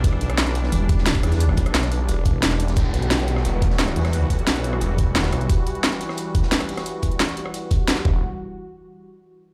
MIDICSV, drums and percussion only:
0, 0, Header, 1, 2, 480
1, 0, Start_track
1, 0, Key_signature, 1, "minor"
1, 0, Tempo, 340909
1, 58, Time_signature, 4, 2, 24, 8
1, 13431, End_track
2, 0, Start_track
2, 0, Title_t, "Drums"
2, 55, Note_on_c, 9, 42, 85
2, 57, Note_off_c, 9, 42, 0
2, 57, Note_on_c, 9, 36, 117
2, 57, Note_on_c, 9, 42, 97
2, 177, Note_on_c, 9, 37, 32
2, 198, Note_off_c, 9, 36, 0
2, 198, Note_off_c, 9, 42, 0
2, 297, Note_on_c, 9, 42, 68
2, 298, Note_off_c, 9, 42, 0
2, 298, Note_on_c, 9, 42, 70
2, 318, Note_off_c, 9, 37, 0
2, 417, Note_off_c, 9, 42, 0
2, 417, Note_on_c, 9, 37, 48
2, 417, Note_on_c, 9, 42, 40
2, 534, Note_on_c, 9, 38, 127
2, 537, Note_off_c, 9, 38, 0
2, 537, Note_off_c, 9, 42, 0
2, 537, Note_on_c, 9, 38, 118
2, 537, Note_on_c, 9, 42, 98
2, 558, Note_off_c, 9, 37, 0
2, 657, Note_off_c, 9, 42, 0
2, 657, Note_on_c, 9, 37, 33
2, 657, Note_on_c, 9, 42, 38
2, 660, Note_off_c, 9, 38, 0
2, 660, Note_on_c, 9, 38, 43
2, 773, Note_off_c, 9, 42, 0
2, 773, Note_on_c, 9, 42, 76
2, 777, Note_off_c, 9, 42, 0
2, 777, Note_on_c, 9, 42, 69
2, 798, Note_off_c, 9, 37, 0
2, 800, Note_off_c, 9, 38, 0
2, 892, Note_on_c, 9, 38, 41
2, 918, Note_off_c, 9, 42, 0
2, 1017, Note_on_c, 9, 42, 99
2, 1020, Note_off_c, 9, 42, 0
2, 1020, Note_on_c, 9, 42, 90
2, 1033, Note_off_c, 9, 38, 0
2, 1161, Note_off_c, 9, 42, 0
2, 1257, Note_on_c, 9, 36, 104
2, 1257, Note_on_c, 9, 42, 73
2, 1261, Note_off_c, 9, 42, 0
2, 1261, Note_on_c, 9, 42, 63
2, 1383, Note_on_c, 9, 38, 46
2, 1398, Note_off_c, 9, 36, 0
2, 1402, Note_off_c, 9, 42, 0
2, 1492, Note_on_c, 9, 42, 92
2, 1495, Note_off_c, 9, 38, 0
2, 1495, Note_on_c, 9, 38, 127
2, 1497, Note_off_c, 9, 38, 0
2, 1497, Note_off_c, 9, 42, 0
2, 1497, Note_on_c, 9, 38, 117
2, 1497, Note_on_c, 9, 42, 97
2, 1617, Note_on_c, 9, 36, 60
2, 1618, Note_off_c, 9, 42, 0
2, 1618, Note_on_c, 9, 42, 37
2, 1637, Note_off_c, 9, 38, 0
2, 1737, Note_off_c, 9, 42, 0
2, 1737, Note_on_c, 9, 37, 48
2, 1737, Note_on_c, 9, 42, 70
2, 1740, Note_on_c, 9, 46, 84
2, 1758, Note_off_c, 9, 36, 0
2, 1857, Note_on_c, 9, 38, 44
2, 1858, Note_off_c, 9, 42, 0
2, 1858, Note_on_c, 9, 42, 38
2, 1878, Note_off_c, 9, 37, 0
2, 1880, Note_off_c, 9, 46, 0
2, 1978, Note_off_c, 9, 42, 0
2, 1978, Note_on_c, 9, 42, 97
2, 1983, Note_off_c, 9, 42, 0
2, 1983, Note_on_c, 9, 42, 86
2, 1997, Note_off_c, 9, 38, 0
2, 2099, Note_on_c, 9, 37, 34
2, 2124, Note_off_c, 9, 42, 0
2, 2209, Note_on_c, 9, 42, 75
2, 2217, Note_on_c, 9, 36, 62
2, 2219, Note_off_c, 9, 42, 0
2, 2219, Note_on_c, 9, 42, 73
2, 2240, Note_off_c, 9, 37, 0
2, 2339, Note_off_c, 9, 42, 0
2, 2339, Note_on_c, 9, 37, 50
2, 2339, Note_on_c, 9, 42, 41
2, 2358, Note_off_c, 9, 36, 0
2, 2458, Note_off_c, 9, 42, 0
2, 2458, Note_on_c, 9, 38, 112
2, 2458, Note_on_c, 9, 42, 98
2, 2463, Note_off_c, 9, 42, 0
2, 2463, Note_on_c, 9, 42, 91
2, 2466, Note_off_c, 9, 38, 0
2, 2466, Note_on_c, 9, 38, 115
2, 2479, Note_off_c, 9, 37, 0
2, 2578, Note_off_c, 9, 38, 0
2, 2578, Note_off_c, 9, 42, 0
2, 2578, Note_on_c, 9, 37, 34
2, 2578, Note_on_c, 9, 38, 41
2, 2578, Note_on_c, 9, 42, 40
2, 2698, Note_off_c, 9, 42, 0
2, 2698, Note_on_c, 9, 42, 74
2, 2706, Note_off_c, 9, 42, 0
2, 2706, Note_on_c, 9, 42, 80
2, 2719, Note_off_c, 9, 37, 0
2, 2719, Note_off_c, 9, 38, 0
2, 2847, Note_off_c, 9, 42, 0
2, 2934, Note_on_c, 9, 42, 89
2, 2938, Note_off_c, 9, 42, 0
2, 2938, Note_on_c, 9, 42, 100
2, 3079, Note_off_c, 9, 42, 0
2, 3168, Note_on_c, 9, 42, 73
2, 3177, Note_on_c, 9, 36, 104
2, 3178, Note_off_c, 9, 42, 0
2, 3178, Note_on_c, 9, 42, 71
2, 3318, Note_off_c, 9, 36, 0
2, 3318, Note_off_c, 9, 42, 0
2, 3418, Note_on_c, 9, 38, 122
2, 3418, Note_on_c, 9, 42, 105
2, 3419, Note_off_c, 9, 42, 0
2, 3419, Note_on_c, 9, 42, 82
2, 3537, Note_off_c, 9, 38, 0
2, 3537, Note_off_c, 9, 42, 0
2, 3537, Note_on_c, 9, 38, 35
2, 3537, Note_on_c, 9, 42, 40
2, 3658, Note_off_c, 9, 42, 0
2, 3658, Note_on_c, 9, 42, 75
2, 3659, Note_off_c, 9, 42, 0
2, 3659, Note_on_c, 9, 42, 68
2, 3678, Note_off_c, 9, 38, 0
2, 3775, Note_on_c, 9, 38, 42
2, 3778, Note_off_c, 9, 42, 0
2, 3778, Note_on_c, 9, 42, 39
2, 3884, Note_off_c, 9, 42, 0
2, 3884, Note_on_c, 9, 42, 87
2, 3897, Note_on_c, 9, 36, 119
2, 3898, Note_off_c, 9, 42, 0
2, 3898, Note_on_c, 9, 42, 94
2, 3916, Note_off_c, 9, 38, 0
2, 4038, Note_off_c, 9, 36, 0
2, 4039, Note_off_c, 9, 42, 0
2, 4138, Note_on_c, 9, 42, 72
2, 4148, Note_off_c, 9, 42, 0
2, 4148, Note_on_c, 9, 42, 71
2, 4257, Note_off_c, 9, 42, 0
2, 4257, Note_on_c, 9, 42, 39
2, 4372, Note_on_c, 9, 38, 115
2, 4374, Note_off_c, 9, 42, 0
2, 4374, Note_on_c, 9, 42, 96
2, 4377, Note_off_c, 9, 38, 0
2, 4377, Note_off_c, 9, 42, 0
2, 4377, Note_on_c, 9, 38, 114
2, 4377, Note_on_c, 9, 42, 96
2, 4497, Note_off_c, 9, 42, 0
2, 4497, Note_on_c, 9, 42, 39
2, 4501, Note_off_c, 9, 38, 0
2, 4501, Note_on_c, 9, 38, 38
2, 4613, Note_off_c, 9, 42, 0
2, 4613, Note_on_c, 9, 42, 70
2, 4617, Note_off_c, 9, 42, 0
2, 4617, Note_on_c, 9, 42, 71
2, 4642, Note_off_c, 9, 38, 0
2, 4737, Note_on_c, 9, 37, 50
2, 4745, Note_on_c, 9, 38, 39
2, 4758, Note_off_c, 9, 42, 0
2, 4856, Note_on_c, 9, 42, 87
2, 4857, Note_off_c, 9, 42, 0
2, 4857, Note_on_c, 9, 42, 100
2, 4878, Note_off_c, 9, 37, 0
2, 4886, Note_off_c, 9, 38, 0
2, 4997, Note_off_c, 9, 42, 0
2, 5095, Note_on_c, 9, 42, 64
2, 5097, Note_off_c, 9, 42, 0
2, 5097, Note_on_c, 9, 36, 106
2, 5097, Note_on_c, 9, 42, 70
2, 5214, Note_on_c, 9, 38, 44
2, 5238, Note_off_c, 9, 36, 0
2, 5238, Note_off_c, 9, 42, 0
2, 5337, Note_off_c, 9, 38, 0
2, 5337, Note_on_c, 9, 38, 120
2, 5337, Note_on_c, 9, 42, 95
2, 5344, Note_off_c, 9, 42, 0
2, 5344, Note_on_c, 9, 42, 76
2, 5458, Note_off_c, 9, 42, 0
2, 5458, Note_on_c, 9, 37, 47
2, 5458, Note_on_c, 9, 42, 37
2, 5478, Note_off_c, 9, 38, 0
2, 5574, Note_on_c, 9, 46, 78
2, 5578, Note_off_c, 9, 42, 0
2, 5578, Note_on_c, 9, 42, 70
2, 5598, Note_off_c, 9, 37, 0
2, 5697, Note_on_c, 9, 38, 40
2, 5698, Note_off_c, 9, 42, 0
2, 5698, Note_on_c, 9, 37, 58
2, 5698, Note_on_c, 9, 42, 36
2, 5715, Note_off_c, 9, 46, 0
2, 5810, Note_off_c, 9, 42, 0
2, 5810, Note_on_c, 9, 42, 86
2, 5818, Note_off_c, 9, 42, 0
2, 5818, Note_on_c, 9, 42, 93
2, 5838, Note_off_c, 9, 38, 0
2, 5839, Note_off_c, 9, 37, 0
2, 5959, Note_off_c, 9, 42, 0
2, 6057, Note_on_c, 9, 36, 64
2, 6058, Note_on_c, 9, 42, 65
2, 6059, Note_off_c, 9, 42, 0
2, 6059, Note_on_c, 9, 42, 70
2, 6179, Note_off_c, 9, 42, 0
2, 6179, Note_on_c, 9, 42, 36
2, 6198, Note_off_c, 9, 36, 0
2, 6298, Note_off_c, 9, 42, 0
2, 6298, Note_on_c, 9, 38, 127
2, 6298, Note_on_c, 9, 42, 94
2, 6303, Note_off_c, 9, 42, 0
2, 6303, Note_on_c, 9, 42, 90
2, 6418, Note_off_c, 9, 42, 0
2, 6418, Note_on_c, 9, 42, 38
2, 6425, Note_off_c, 9, 38, 0
2, 6425, Note_on_c, 9, 38, 40
2, 6533, Note_off_c, 9, 42, 0
2, 6533, Note_on_c, 9, 42, 63
2, 6538, Note_off_c, 9, 42, 0
2, 6538, Note_on_c, 9, 42, 67
2, 6565, Note_off_c, 9, 38, 0
2, 6658, Note_on_c, 9, 37, 50
2, 6679, Note_off_c, 9, 42, 0
2, 6770, Note_on_c, 9, 42, 88
2, 6778, Note_off_c, 9, 42, 0
2, 6778, Note_on_c, 9, 42, 96
2, 6799, Note_off_c, 9, 37, 0
2, 6919, Note_off_c, 9, 42, 0
2, 7014, Note_on_c, 9, 42, 68
2, 7017, Note_on_c, 9, 36, 111
2, 7019, Note_off_c, 9, 42, 0
2, 7019, Note_on_c, 9, 42, 71
2, 7158, Note_off_c, 9, 36, 0
2, 7159, Note_off_c, 9, 42, 0
2, 7249, Note_on_c, 9, 38, 106
2, 7254, Note_on_c, 9, 42, 95
2, 7259, Note_off_c, 9, 38, 0
2, 7259, Note_off_c, 9, 42, 0
2, 7259, Note_on_c, 9, 38, 123
2, 7259, Note_on_c, 9, 42, 97
2, 7378, Note_off_c, 9, 38, 0
2, 7378, Note_off_c, 9, 42, 0
2, 7378, Note_on_c, 9, 38, 39
2, 7378, Note_on_c, 9, 42, 36
2, 7386, Note_off_c, 9, 38, 0
2, 7386, Note_on_c, 9, 38, 55
2, 7491, Note_off_c, 9, 42, 0
2, 7491, Note_on_c, 9, 42, 72
2, 7498, Note_off_c, 9, 42, 0
2, 7498, Note_on_c, 9, 37, 51
2, 7498, Note_on_c, 9, 42, 66
2, 7526, Note_off_c, 9, 38, 0
2, 7618, Note_off_c, 9, 42, 0
2, 7618, Note_on_c, 9, 42, 36
2, 7639, Note_off_c, 9, 37, 0
2, 7738, Note_off_c, 9, 42, 0
2, 7738, Note_on_c, 9, 36, 127
2, 7738, Note_on_c, 9, 42, 87
2, 7742, Note_off_c, 9, 42, 0
2, 7742, Note_on_c, 9, 42, 83
2, 7878, Note_off_c, 9, 36, 0
2, 7883, Note_off_c, 9, 42, 0
2, 7977, Note_on_c, 9, 42, 72
2, 7978, Note_off_c, 9, 42, 0
2, 7978, Note_on_c, 9, 42, 68
2, 8099, Note_off_c, 9, 42, 0
2, 8099, Note_on_c, 9, 42, 35
2, 8210, Note_off_c, 9, 42, 0
2, 8210, Note_on_c, 9, 42, 92
2, 8219, Note_off_c, 9, 42, 0
2, 8219, Note_on_c, 9, 38, 127
2, 8219, Note_on_c, 9, 42, 91
2, 8231, Note_off_c, 9, 38, 0
2, 8231, Note_on_c, 9, 38, 115
2, 8339, Note_off_c, 9, 42, 0
2, 8339, Note_on_c, 9, 42, 38
2, 8345, Note_off_c, 9, 38, 0
2, 8345, Note_on_c, 9, 38, 41
2, 8458, Note_off_c, 9, 42, 0
2, 8458, Note_on_c, 9, 42, 74
2, 8459, Note_off_c, 9, 42, 0
2, 8459, Note_on_c, 9, 42, 65
2, 8486, Note_off_c, 9, 38, 0
2, 8579, Note_on_c, 9, 37, 49
2, 8579, Note_on_c, 9, 38, 42
2, 8600, Note_off_c, 9, 42, 0
2, 8692, Note_on_c, 9, 42, 88
2, 8698, Note_off_c, 9, 42, 0
2, 8698, Note_on_c, 9, 42, 90
2, 8719, Note_off_c, 9, 37, 0
2, 8720, Note_off_c, 9, 38, 0
2, 8839, Note_off_c, 9, 42, 0
2, 8935, Note_on_c, 9, 42, 67
2, 8937, Note_on_c, 9, 36, 113
2, 8938, Note_off_c, 9, 42, 0
2, 8938, Note_on_c, 9, 42, 66
2, 9048, Note_on_c, 9, 38, 44
2, 9078, Note_off_c, 9, 36, 0
2, 9078, Note_off_c, 9, 42, 0
2, 9171, Note_on_c, 9, 42, 83
2, 9175, Note_off_c, 9, 38, 0
2, 9175, Note_on_c, 9, 38, 111
2, 9178, Note_off_c, 9, 38, 0
2, 9178, Note_off_c, 9, 42, 0
2, 9178, Note_on_c, 9, 38, 127
2, 9178, Note_on_c, 9, 42, 91
2, 9298, Note_off_c, 9, 42, 0
2, 9298, Note_on_c, 9, 37, 48
2, 9298, Note_on_c, 9, 42, 36
2, 9319, Note_off_c, 9, 38, 0
2, 9413, Note_on_c, 9, 46, 86
2, 9418, Note_off_c, 9, 42, 0
2, 9418, Note_on_c, 9, 42, 67
2, 9439, Note_off_c, 9, 37, 0
2, 9539, Note_off_c, 9, 42, 0
2, 9539, Note_on_c, 9, 37, 53
2, 9539, Note_on_c, 9, 42, 35
2, 9540, Note_on_c, 9, 38, 44
2, 9554, Note_off_c, 9, 46, 0
2, 9659, Note_off_c, 9, 42, 0
2, 9659, Note_on_c, 9, 42, 86
2, 9661, Note_off_c, 9, 42, 0
2, 9661, Note_on_c, 9, 42, 79
2, 9679, Note_off_c, 9, 37, 0
2, 9681, Note_off_c, 9, 38, 0
2, 9802, Note_off_c, 9, 42, 0
2, 9891, Note_on_c, 9, 42, 76
2, 9897, Note_on_c, 9, 36, 67
2, 9899, Note_off_c, 9, 42, 0
2, 9899, Note_on_c, 9, 42, 64
2, 10018, Note_off_c, 9, 42, 0
2, 10018, Note_on_c, 9, 42, 36
2, 10038, Note_off_c, 9, 36, 0
2, 10135, Note_on_c, 9, 38, 112
2, 10136, Note_off_c, 9, 42, 0
2, 10136, Note_on_c, 9, 42, 89
2, 10137, Note_off_c, 9, 38, 0
2, 10137, Note_off_c, 9, 42, 0
2, 10137, Note_on_c, 9, 38, 120
2, 10137, Note_on_c, 9, 42, 87
2, 10258, Note_off_c, 9, 42, 0
2, 10258, Note_on_c, 9, 42, 34
2, 10273, Note_off_c, 9, 38, 0
2, 10273, Note_on_c, 9, 38, 39
2, 10377, Note_off_c, 9, 42, 0
2, 10377, Note_on_c, 9, 42, 65
2, 10381, Note_off_c, 9, 42, 0
2, 10381, Note_on_c, 9, 42, 70
2, 10414, Note_off_c, 9, 38, 0
2, 10497, Note_on_c, 9, 37, 47
2, 10522, Note_off_c, 9, 42, 0
2, 10616, Note_on_c, 9, 42, 86
2, 10638, Note_off_c, 9, 37, 0
2, 10757, Note_off_c, 9, 42, 0
2, 10851, Note_on_c, 9, 42, 86
2, 10857, Note_off_c, 9, 42, 0
2, 10857, Note_on_c, 9, 36, 107
2, 10857, Note_on_c, 9, 42, 66
2, 10998, Note_off_c, 9, 36, 0
2, 10998, Note_off_c, 9, 42, 0
2, 11087, Note_on_c, 9, 42, 78
2, 11097, Note_off_c, 9, 42, 0
2, 11097, Note_on_c, 9, 38, 126
2, 11097, Note_on_c, 9, 42, 91
2, 11218, Note_off_c, 9, 38, 0
2, 11218, Note_off_c, 9, 42, 0
2, 11218, Note_on_c, 9, 38, 38
2, 11218, Note_on_c, 9, 42, 35
2, 11226, Note_off_c, 9, 38, 0
2, 11226, Note_on_c, 9, 38, 34
2, 11337, Note_on_c, 9, 36, 112
2, 11358, Note_off_c, 9, 42, 0
2, 11367, Note_off_c, 9, 38, 0
2, 11478, Note_off_c, 9, 36, 0
2, 13431, End_track
0, 0, End_of_file